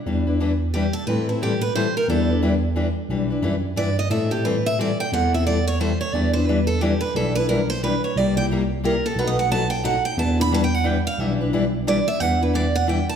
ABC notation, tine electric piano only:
X:1
M:3/4
L:1/8
Q:"Swing" 1/4=178
K:Em
V:1 name="Tine electric piano" clef=bass
E,,6 | A,,6 | E,,6 | B,,,2 F,,2 G,,2 |
A,,6 | E,,6 | E,,6 | B,,,6 |
C,,6 | B,,,6 | E,,6 | B,,,6 |
E,,6 |]